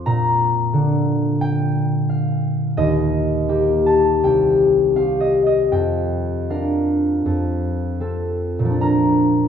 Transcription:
Already playing: F3
0.06 A#2 A#5
0.73 D3
1.41 G5
2.09 F5
2.77 D#2 D#5
3.49 A#3 G4
3.86 A5
4.23 C2 G5
4.96 C4 G4 F5
5.20 D#5
5.46 D#5
5.72 F2 G5
6.50 D4 A#4 F5
7.26 F2
8.00 C4 A4
8.59 A#2
8.65 F3
8.70 D4
8.81 A#4 A#5

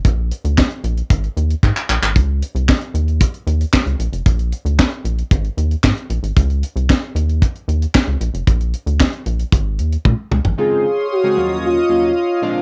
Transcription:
0.05 A#1, kick, closed hi-hat
0.31 closed hi-hat
0.45 D2, closed hi-hat
0.58 kick, snare, clap
0.70 closed hi-hat
0.84 A#1, closed hi-hat
0.97 closed hi-hat
1.10 G#1, kick, closed hi-hat
1.24 closed hi-hat
1.37 D#2, closed hi-hat
1.50 closed hi-hat
1.63 G#2, kick, clap
1.77 clap
1.89 A#1, clap
2.02 G#1, clap
2.16 C#2, kick, closed hi-hat
2.42 closed hi-hat
2.55 C2, closed hi-hat
2.69 kick, snare, clap
2.81 closed hi-hat
2.94 D#2, closed hi-hat
3.08 closed hi-hat
3.21 kick, closed hi-hat
3.34 closed hi-hat
3.47 D#2, closed hi-hat
3.61 closed hi-hat
3.73 kick, snare, clap
3.86 C#2, closed hi-hat
3.99 A#1, closed hi-hat
4.13 F1, closed hi-hat
4.26 A#1, kick, closed hi-hat
4.39 closed hi-hat
4.52 closed hi-hat
4.65 D2, closed hi-hat
4.79 kick, snare, clap
5.05 A#1, closed hi-hat
5.18 closed hi-hat
5.31 G#1, kick, closed hi-hat
5.45 closed hi-hat
5.57 D#2, closed hi-hat
5.71 closed hi-hat
5.84 G#2, kick, snare, clap
5.97 closed hi-hat
6.10 A#1, closed hi-hat
6.23 G#1, closed hi-hat
6.36 C#2, kick, closed hi-hat
6.50 closed hi-hat
6.63 closed hi-hat
6.76 C2, closed hi-hat
6.90 kick, snare, clap
7.15 D#2, closed hi-hat
7.29 closed hi-hat
7.42 kick, closed hi-hat
7.55 closed hi-hat
7.68 D#2, closed hi-hat
7.82 closed hi-hat
7.95 kick, snare, clap
8.08 C#2
8.21 A#1, closed hi-hat
8.34 F1, closed hi-hat
8.47 A#1, kick, closed hi-hat
8.61 closed hi-hat
8.74 closed hi-hat
8.86 D2, closed hi-hat
9.00 kick, snare, clap
9.13 closed hi-hat
9.26 A#1, closed hi-hat
9.39 closed hi-hat
9.52 G#1, kick, closed hi-hat
9.79 D#2, closed hi-hat
9.92 closed hi-hat
10.05 A#2, kick, high tom
10.31 C#2, mid tom
10.45 G#1, floor tom
10.58 C#3 G#3 C4 D#4 F4 G#4 C#5 F5 C6 D#6
11.12 F#4
11.23 C#3 G#3 C4 D#4 G#4
11.36 D#2 F#3 A#3 C#4 F4 D#5
11.64 F4
11.89 D#2 F#3 A#3 C#4 F4
12.42 A#2 G#3 C4 D4 F4 A#4 G#5 D6

